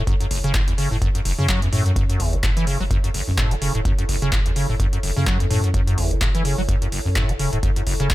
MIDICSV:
0, 0, Header, 1, 5, 480
1, 0, Start_track
1, 0, Key_signature, 3, "minor"
1, 0, Tempo, 472441
1, 74, Time_signature, 4, 2, 24, 8
1, 8277, End_track
2, 0, Start_track
2, 0, Title_t, "Ambient pad"
2, 0, Program_c, 0, 92
2, 0, Note_on_c, 0, 64, 72
2, 0, Note_on_c, 0, 69, 66
2, 0, Note_on_c, 0, 73, 74
2, 8277, Note_off_c, 0, 64, 0
2, 8277, Note_off_c, 0, 69, 0
2, 8277, Note_off_c, 0, 73, 0
2, 8277, End_track
3, 0, Start_track
3, 0, Title_t, "Acid bass"
3, 0, Program_c, 1, 38
3, 73, Note_on_c, 1, 42, 99
3, 148, Note_off_c, 1, 42, 0
3, 207, Note_on_c, 1, 42, 80
3, 266, Note_off_c, 1, 42, 0
3, 313, Note_on_c, 1, 30, 101
3, 388, Note_off_c, 1, 30, 0
3, 447, Note_on_c, 1, 49, 104
3, 534, Note_off_c, 1, 49, 0
3, 552, Note_on_c, 1, 45, 79
3, 627, Note_off_c, 1, 45, 0
3, 687, Note_on_c, 1, 40, 73
3, 746, Note_off_c, 1, 40, 0
3, 792, Note_on_c, 1, 49, 77
3, 904, Note_off_c, 1, 49, 0
3, 926, Note_on_c, 1, 45, 76
3, 985, Note_off_c, 1, 45, 0
3, 1032, Note_on_c, 1, 42, 98
3, 1107, Note_off_c, 1, 42, 0
3, 1167, Note_on_c, 1, 42, 76
3, 1226, Note_off_c, 1, 42, 0
3, 1272, Note_on_c, 1, 30, 102
3, 1347, Note_off_c, 1, 30, 0
3, 1407, Note_on_c, 1, 49, 100
3, 1495, Note_off_c, 1, 49, 0
3, 1512, Note_on_c, 1, 54, 96
3, 1624, Note_off_c, 1, 54, 0
3, 1648, Note_on_c, 1, 40, 78
3, 1706, Note_off_c, 1, 40, 0
3, 1753, Note_on_c, 1, 45, 98
3, 1864, Note_off_c, 1, 45, 0
3, 1888, Note_on_c, 1, 42, 77
3, 1946, Note_off_c, 1, 42, 0
3, 1992, Note_on_c, 1, 42, 98
3, 2067, Note_off_c, 1, 42, 0
3, 2128, Note_on_c, 1, 42, 74
3, 2233, Note_on_c, 1, 40, 76
3, 2248, Note_off_c, 1, 42, 0
3, 2368, Note_on_c, 1, 30, 78
3, 2384, Note_off_c, 1, 40, 0
3, 2403, Note_off_c, 1, 30, 0
3, 2473, Note_on_c, 1, 45, 80
3, 2548, Note_off_c, 1, 45, 0
3, 2608, Note_on_c, 1, 52, 98
3, 2695, Note_off_c, 1, 52, 0
3, 2713, Note_on_c, 1, 49, 75
3, 2825, Note_off_c, 1, 49, 0
3, 2848, Note_on_c, 1, 54, 77
3, 2883, Note_off_c, 1, 54, 0
3, 2952, Note_on_c, 1, 42, 105
3, 3027, Note_off_c, 1, 42, 0
3, 3087, Note_on_c, 1, 42, 75
3, 3146, Note_off_c, 1, 42, 0
3, 3193, Note_on_c, 1, 30, 103
3, 3268, Note_off_c, 1, 30, 0
3, 3329, Note_on_c, 1, 30, 74
3, 3363, Note_off_c, 1, 30, 0
3, 3433, Note_on_c, 1, 45, 81
3, 3569, Note_on_c, 1, 54, 105
3, 3584, Note_off_c, 1, 45, 0
3, 3603, Note_off_c, 1, 54, 0
3, 3674, Note_on_c, 1, 49, 79
3, 3785, Note_off_c, 1, 49, 0
3, 3808, Note_on_c, 1, 45, 72
3, 3866, Note_off_c, 1, 45, 0
3, 3914, Note_on_c, 1, 42, 99
3, 3988, Note_off_c, 1, 42, 0
3, 4048, Note_on_c, 1, 42, 76
3, 4106, Note_off_c, 1, 42, 0
3, 4154, Note_on_c, 1, 30, 100
3, 4228, Note_off_c, 1, 30, 0
3, 4288, Note_on_c, 1, 49, 105
3, 4375, Note_off_c, 1, 49, 0
3, 4393, Note_on_c, 1, 45, 82
3, 4468, Note_off_c, 1, 45, 0
3, 4529, Note_on_c, 1, 40, 73
3, 4587, Note_off_c, 1, 40, 0
3, 4633, Note_on_c, 1, 49, 75
3, 4745, Note_off_c, 1, 49, 0
3, 4769, Note_on_c, 1, 45, 76
3, 4827, Note_off_c, 1, 45, 0
3, 4873, Note_on_c, 1, 42, 100
3, 4948, Note_off_c, 1, 42, 0
3, 5008, Note_on_c, 1, 42, 78
3, 5066, Note_off_c, 1, 42, 0
3, 5114, Note_on_c, 1, 30, 105
3, 5188, Note_off_c, 1, 30, 0
3, 5249, Note_on_c, 1, 49, 101
3, 5335, Note_off_c, 1, 49, 0
3, 5354, Note_on_c, 1, 54, 97
3, 5465, Note_off_c, 1, 54, 0
3, 5488, Note_on_c, 1, 40, 77
3, 5546, Note_off_c, 1, 40, 0
3, 5593, Note_on_c, 1, 45, 96
3, 5705, Note_off_c, 1, 45, 0
3, 5728, Note_on_c, 1, 42, 76
3, 5786, Note_off_c, 1, 42, 0
3, 5833, Note_on_c, 1, 42, 99
3, 5908, Note_off_c, 1, 42, 0
3, 5968, Note_on_c, 1, 42, 79
3, 6073, Note_on_c, 1, 40, 75
3, 6089, Note_off_c, 1, 42, 0
3, 6208, Note_on_c, 1, 30, 80
3, 6223, Note_off_c, 1, 40, 0
3, 6243, Note_off_c, 1, 30, 0
3, 6313, Note_on_c, 1, 45, 80
3, 6388, Note_off_c, 1, 45, 0
3, 6448, Note_on_c, 1, 52, 92
3, 6535, Note_off_c, 1, 52, 0
3, 6553, Note_on_c, 1, 49, 73
3, 6665, Note_off_c, 1, 49, 0
3, 6688, Note_on_c, 1, 54, 76
3, 6723, Note_off_c, 1, 54, 0
3, 6793, Note_on_c, 1, 42, 99
3, 6868, Note_off_c, 1, 42, 0
3, 6927, Note_on_c, 1, 42, 77
3, 6986, Note_off_c, 1, 42, 0
3, 7032, Note_on_c, 1, 30, 105
3, 7107, Note_off_c, 1, 30, 0
3, 7167, Note_on_c, 1, 30, 77
3, 7202, Note_off_c, 1, 30, 0
3, 7272, Note_on_c, 1, 45, 77
3, 7407, Note_on_c, 1, 54, 102
3, 7423, Note_off_c, 1, 45, 0
3, 7443, Note_off_c, 1, 54, 0
3, 7512, Note_on_c, 1, 49, 77
3, 7624, Note_off_c, 1, 49, 0
3, 7646, Note_on_c, 1, 45, 75
3, 7705, Note_off_c, 1, 45, 0
3, 7753, Note_on_c, 1, 42, 99
3, 7827, Note_off_c, 1, 42, 0
3, 7887, Note_on_c, 1, 42, 79
3, 7946, Note_off_c, 1, 42, 0
3, 7992, Note_on_c, 1, 30, 102
3, 8067, Note_off_c, 1, 30, 0
3, 8127, Note_on_c, 1, 49, 107
3, 8215, Note_off_c, 1, 49, 0
3, 8233, Note_on_c, 1, 45, 78
3, 8277, Note_off_c, 1, 45, 0
3, 8277, End_track
4, 0, Start_track
4, 0, Title_t, "Sub bass"
4, 0, Program_c, 2, 38
4, 314, Note_on_c, 2, 30, 97
4, 422, Note_off_c, 2, 30, 0
4, 448, Note_on_c, 2, 30, 100
4, 886, Note_off_c, 2, 30, 0
4, 928, Note_on_c, 2, 30, 86
4, 1013, Note_off_c, 2, 30, 0
4, 1273, Note_on_c, 2, 28, 95
4, 1382, Note_off_c, 2, 28, 0
4, 1408, Note_on_c, 2, 42, 83
4, 1720, Note_off_c, 2, 42, 0
4, 1753, Note_on_c, 2, 42, 100
4, 2200, Note_off_c, 2, 42, 0
4, 2234, Note_on_c, 2, 30, 97
4, 2342, Note_off_c, 2, 30, 0
4, 2368, Note_on_c, 2, 30, 101
4, 2806, Note_off_c, 2, 30, 0
4, 2849, Note_on_c, 2, 30, 90
4, 2933, Note_off_c, 2, 30, 0
4, 3329, Note_on_c, 2, 42, 82
4, 3516, Note_off_c, 2, 42, 0
4, 3569, Note_on_c, 2, 28, 96
4, 3755, Note_off_c, 2, 28, 0
4, 3809, Note_on_c, 2, 28, 98
4, 3893, Note_off_c, 2, 28, 0
4, 4155, Note_on_c, 2, 30, 102
4, 4262, Note_off_c, 2, 30, 0
4, 4289, Note_on_c, 2, 30, 100
4, 4726, Note_off_c, 2, 30, 0
4, 4768, Note_on_c, 2, 30, 89
4, 4853, Note_off_c, 2, 30, 0
4, 5114, Note_on_c, 2, 28, 93
4, 5222, Note_off_c, 2, 28, 0
4, 5249, Note_on_c, 2, 42, 81
4, 5561, Note_off_c, 2, 42, 0
4, 5594, Note_on_c, 2, 42, 98
4, 6041, Note_off_c, 2, 42, 0
4, 6074, Note_on_c, 2, 30, 96
4, 6182, Note_off_c, 2, 30, 0
4, 6210, Note_on_c, 2, 30, 103
4, 6647, Note_off_c, 2, 30, 0
4, 6690, Note_on_c, 2, 30, 86
4, 6773, Note_off_c, 2, 30, 0
4, 7169, Note_on_c, 2, 42, 82
4, 7356, Note_off_c, 2, 42, 0
4, 7409, Note_on_c, 2, 28, 96
4, 7595, Note_off_c, 2, 28, 0
4, 7649, Note_on_c, 2, 28, 98
4, 7733, Note_off_c, 2, 28, 0
4, 7994, Note_on_c, 2, 30, 101
4, 8102, Note_off_c, 2, 30, 0
4, 8129, Note_on_c, 2, 30, 100
4, 8277, Note_off_c, 2, 30, 0
4, 8277, End_track
5, 0, Start_track
5, 0, Title_t, "Drums"
5, 74, Note_on_c, 9, 36, 123
5, 74, Note_on_c, 9, 42, 74
5, 175, Note_off_c, 9, 36, 0
5, 175, Note_off_c, 9, 42, 0
5, 209, Note_on_c, 9, 42, 52
5, 310, Note_off_c, 9, 42, 0
5, 314, Note_on_c, 9, 46, 107
5, 415, Note_off_c, 9, 46, 0
5, 449, Note_on_c, 9, 42, 36
5, 550, Note_off_c, 9, 42, 0
5, 553, Note_on_c, 9, 42, 78
5, 554, Note_on_c, 9, 36, 122
5, 555, Note_on_c, 9, 39, 125
5, 655, Note_off_c, 9, 36, 0
5, 655, Note_off_c, 9, 42, 0
5, 657, Note_off_c, 9, 39, 0
5, 688, Note_on_c, 9, 42, 51
5, 790, Note_off_c, 9, 42, 0
5, 793, Note_on_c, 9, 46, 101
5, 895, Note_off_c, 9, 46, 0
5, 1033, Note_on_c, 9, 36, 113
5, 1034, Note_on_c, 9, 42, 77
5, 1135, Note_off_c, 9, 36, 0
5, 1135, Note_off_c, 9, 42, 0
5, 1169, Note_on_c, 9, 42, 54
5, 1270, Note_off_c, 9, 42, 0
5, 1273, Note_on_c, 9, 46, 105
5, 1375, Note_off_c, 9, 46, 0
5, 1513, Note_on_c, 9, 36, 116
5, 1514, Note_on_c, 9, 42, 76
5, 1516, Note_on_c, 9, 39, 122
5, 1615, Note_off_c, 9, 36, 0
5, 1615, Note_off_c, 9, 42, 0
5, 1617, Note_off_c, 9, 39, 0
5, 1649, Note_on_c, 9, 42, 49
5, 1750, Note_off_c, 9, 42, 0
5, 1754, Note_on_c, 9, 46, 105
5, 1855, Note_off_c, 9, 46, 0
5, 1888, Note_on_c, 9, 42, 35
5, 1990, Note_off_c, 9, 42, 0
5, 1993, Note_on_c, 9, 36, 118
5, 1993, Note_on_c, 9, 42, 73
5, 2095, Note_off_c, 9, 36, 0
5, 2095, Note_off_c, 9, 42, 0
5, 2129, Note_on_c, 9, 42, 50
5, 2231, Note_off_c, 9, 42, 0
5, 2233, Note_on_c, 9, 36, 63
5, 2234, Note_on_c, 9, 46, 106
5, 2335, Note_off_c, 9, 36, 0
5, 2335, Note_off_c, 9, 46, 0
5, 2369, Note_on_c, 9, 42, 34
5, 2471, Note_off_c, 9, 42, 0
5, 2473, Note_on_c, 9, 36, 123
5, 2474, Note_on_c, 9, 42, 77
5, 2476, Note_on_c, 9, 39, 121
5, 2575, Note_off_c, 9, 36, 0
5, 2575, Note_off_c, 9, 42, 0
5, 2577, Note_off_c, 9, 39, 0
5, 2609, Note_on_c, 9, 42, 49
5, 2710, Note_off_c, 9, 42, 0
5, 2713, Note_on_c, 9, 46, 102
5, 2815, Note_off_c, 9, 46, 0
5, 2954, Note_on_c, 9, 36, 118
5, 2954, Note_on_c, 9, 42, 77
5, 3055, Note_off_c, 9, 36, 0
5, 3055, Note_off_c, 9, 42, 0
5, 3089, Note_on_c, 9, 42, 49
5, 3191, Note_off_c, 9, 42, 0
5, 3194, Note_on_c, 9, 46, 104
5, 3295, Note_off_c, 9, 46, 0
5, 3434, Note_on_c, 9, 36, 120
5, 3434, Note_on_c, 9, 42, 71
5, 3436, Note_on_c, 9, 39, 122
5, 3535, Note_off_c, 9, 36, 0
5, 3536, Note_off_c, 9, 42, 0
5, 3538, Note_off_c, 9, 39, 0
5, 3569, Note_on_c, 9, 42, 49
5, 3671, Note_off_c, 9, 42, 0
5, 3675, Note_on_c, 9, 46, 109
5, 3776, Note_off_c, 9, 46, 0
5, 3809, Note_on_c, 9, 42, 34
5, 3911, Note_off_c, 9, 42, 0
5, 3914, Note_on_c, 9, 36, 122
5, 3914, Note_on_c, 9, 42, 74
5, 4015, Note_off_c, 9, 42, 0
5, 4016, Note_off_c, 9, 36, 0
5, 4049, Note_on_c, 9, 42, 48
5, 4151, Note_off_c, 9, 42, 0
5, 4154, Note_on_c, 9, 46, 102
5, 4256, Note_off_c, 9, 46, 0
5, 4289, Note_on_c, 9, 42, 35
5, 4390, Note_off_c, 9, 42, 0
5, 4393, Note_on_c, 9, 42, 74
5, 4394, Note_on_c, 9, 36, 116
5, 4395, Note_on_c, 9, 39, 115
5, 4495, Note_off_c, 9, 42, 0
5, 4496, Note_off_c, 9, 36, 0
5, 4497, Note_off_c, 9, 39, 0
5, 4529, Note_on_c, 9, 42, 48
5, 4630, Note_off_c, 9, 42, 0
5, 4633, Note_on_c, 9, 46, 104
5, 4735, Note_off_c, 9, 46, 0
5, 4874, Note_on_c, 9, 36, 115
5, 4874, Note_on_c, 9, 42, 73
5, 4975, Note_off_c, 9, 42, 0
5, 4976, Note_off_c, 9, 36, 0
5, 5008, Note_on_c, 9, 42, 50
5, 5110, Note_off_c, 9, 42, 0
5, 5114, Note_on_c, 9, 46, 99
5, 5215, Note_off_c, 9, 46, 0
5, 5354, Note_on_c, 9, 36, 118
5, 5354, Note_on_c, 9, 42, 75
5, 5356, Note_on_c, 9, 39, 114
5, 5456, Note_off_c, 9, 36, 0
5, 5456, Note_off_c, 9, 42, 0
5, 5458, Note_off_c, 9, 39, 0
5, 5489, Note_on_c, 9, 42, 48
5, 5590, Note_off_c, 9, 42, 0
5, 5594, Note_on_c, 9, 46, 105
5, 5695, Note_off_c, 9, 46, 0
5, 5729, Note_on_c, 9, 42, 34
5, 5831, Note_off_c, 9, 42, 0
5, 5833, Note_on_c, 9, 42, 73
5, 5834, Note_on_c, 9, 36, 110
5, 5935, Note_off_c, 9, 36, 0
5, 5935, Note_off_c, 9, 42, 0
5, 5969, Note_on_c, 9, 42, 49
5, 6070, Note_off_c, 9, 42, 0
5, 6074, Note_on_c, 9, 36, 59
5, 6074, Note_on_c, 9, 46, 104
5, 6175, Note_off_c, 9, 46, 0
5, 6176, Note_off_c, 9, 36, 0
5, 6209, Note_on_c, 9, 42, 33
5, 6310, Note_off_c, 9, 42, 0
5, 6313, Note_on_c, 9, 42, 77
5, 6314, Note_on_c, 9, 36, 122
5, 6315, Note_on_c, 9, 39, 113
5, 6415, Note_off_c, 9, 42, 0
5, 6416, Note_off_c, 9, 36, 0
5, 6417, Note_off_c, 9, 39, 0
5, 6448, Note_on_c, 9, 42, 49
5, 6550, Note_off_c, 9, 42, 0
5, 6553, Note_on_c, 9, 46, 103
5, 6655, Note_off_c, 9, 46, 0
5, 6793, Note_on_c, 9, 42, 75
5, 6794, Note_on_c, 9, 36, 107
5, 6895, Note_off_c, 9, 36, 0
5, 6895, Note_off_c, 9, 42, 0
5, 6928, Note_on_c, 9, 42, 50
5, 7030, Note_off_c, 9, 42, 0
5, 7033, Note_on_c, 9, 46, 103
5, 7135, Note_off_c, 9, 46, 0
5, 7273, Note_on_c, 9, 36, 117
5, 7273, Note_on_c, 9, 42, 72
5, 7275, Note_on_c, 9, 39, 113
5, 7375, Note_off_c, 9, 36, 0
5, 7375, Note_off_c, 9, 42, 0
5, 7377, Note_off_c, 9, 39, 0
5, 7408, Note_on_c, 9, 42, 50
5, 7510, Note_off_c, 9, 42, 0
5, 7513, Note_on_c, 9, 46, 105
5, 7614, Note_off_c, 9, 46, 0
5, 7648, Note_on_c, 9, 42, 35
5, 7749, Note_off_c, 9, 42, 0
5, 7752, Note_on_c, 9, 42, 74
5, 7753, Note_on_c, 9, 36, 111
5, 7854, Note_off_c, 9, 42, 0
5, 7855, Note_off_c, 9, 36, 0
5, 7888, Note_on_c, 9, 42, 49
5, 7989, Note_off_c, 9, 42, 0
5, 7992, Note_on_c, 9, 46, 101
5, 8094, Note_off_c, 9, 46, 0
5, 8127, Note_on_c, 9, 42, 37
5, 8229, Note_off_c, 9, 42, 0
5, 8233, Note_on_c, 9, 36, 118
5, 8233, Note_on_c, 9, 42, 78
5, 8235, Note_on_c, 9, 39, 113
5, 8277, Note_off_c, 9, 36, 0
5, 8277, Note_off_c, 9, 39, 0
5, 8277, Note_off_c, 9, 42, 0
5, 8277, End_track
0, 0, End_of_file